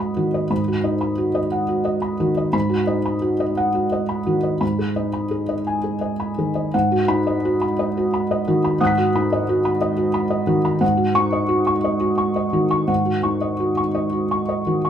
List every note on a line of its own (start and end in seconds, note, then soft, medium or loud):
0.00 0.47 G#2 soft
0.00 0.53 D#4 soft
0.00 0.17 F#4 soft
0.00 0.34 D#5 soft
0.00 0.53 F#5 soft
0.00 0.51 B5 soft
0.17 0.71 D#3 soft
0.17 0.44 F#4 soft
0.34 0.61 D#5 soft
0.50 2.50 G#2 soft
0.50 0.77 B5 soft
0.68 0.95 F#4 soft
0.84 1.38 D#4 soft
0.84 1.11 D#5 soft
1.01 1.28 B5 soft
1.18 1.45 F#4 soft
1.35 1.62 D#5 soft
1.52 1.79 F#5 soft
1.68 1.96 F#4 soft
1.85 2.13 D#5 soft
2.02 2.30 B5 soft
2.20 2.54 D#3 soft
2.20 2.47 F#4 soft
2.37 2.54 D#5 soft
2.53 4.57 G#2 medium
2.53 2.81 B5 medium
2.70 2.98 F#4 soft
2.87 3.43 D#4 soft
2.87 3.15 D#5 soft
3.06 3.33 B5 soft
3.22 3.50 F#4 soft
3.40 3.67 D#5 soft
3.57 3.85 F#5 medium
3.74 4.02 F#4 soft
3.92 4.20 D#5 soft
4.09 4.37 B5 soft
4.26 4.62 D#3 soft
4.26 4.55 F#4 soft
4.43 4.61 D#5 soft
4.61 6.69 G#2 soft
4.61 4.89 B5 soft
4.79 5.07 G#4 soft
4.96 5.53 D#4 soft
4.96 5.25 D#5 soft
5.13 5.42 B5 soft
5.31 5.59 G#4 soft
5.49 5.77 D#5 soft
5.67 5.95 G#5 soft
5.84 6.12 G#4 soft
6.01 6.30 D#5 soft
6.20 6.49 B5 soft
6.38 6.74 D#3 soft
6.38 6.67 G#4 soft
6.55 6.73 D#5 soft
6.74 8.76 G#2 medium
6.74 7.02 F#5 medium
6.92 7.20 F#4 soft
7.08 7.64 D#4 medium
7.08 7.37 B5 medium
7.27 7.54 D#5 medium
7.45 7.72 F#4 medium
7.61 7.88 B5 medium
7.79 8.06 D#5 medium
7.97 8.23 F#4 soft
8.14 8.40 B5 medium
8.31 8.57 D#5 medium
8.48 9.01 D#3 medium
8.48 8.74 F#4 medium
8.64 8.91 B5 medium
8.80 10.79 G#2 medium
8.80 9.07 F#5 medium
8.80 10.79 D#6 soft
8.80 10.80 F#6 soft
8.87 10.82 B6 soft
8.98 9.25 F#4 medium
9.15 9.69 D#4 medium
9.15 9.42 B5 medium
9.33 9.59 D#5 medium
9.49 9.75 F#4 medium
9.65 9.92 B5 medium
9.81 10.08 D#5 medium
9.97 10.25 F#4 medium
10.14 10.41 B5 medium
10.30 10.58 D#5 medium
10.47 10.81 D#3 medium
10.47 10.75 F#4 medium
10.65 10.82 B5 medium
10.81 12.84 G#2 medium
10.81 11.09 F#5 medium
10.97 11.25 F#4 soft
11.15 11.70 D#4 soft
11.15 11.43 C#6 medium
11.32 11.60 D#5 soft
11.48 11.77 F#4 medium
11.67 11.95 C#6 medium
11.84 12.12 D#5 medium
12.00 12.29 F#4 soft
12.18 12.46 C#6 soft
12.36 12.64 D#5 soft
12.53 13.10 D#3 soft
12.53 12.82 F#4 soft
12.71 12.99 C#6 soft
12.87 14.90 G#2 soft
12.87 13.17 F#5 soft
13.06 13.34 F#4 soft
13.23 13.80 D#4 soft
13.23 13.52 C#6 soft
13.41 13.70 D#5 soft
13.60 13.88 F#4 soft
13.77 14.06 C#6 soft
13.95 14.23 D#5 soft
14.12 14.41 F#4 soft
14.31 14.60 C#6 soft
14.49 14.77 D#5 soft
14.67 14.90 D#3 soft
14.67 14.90 F#4 soft
14.85 14.90 C#6 soft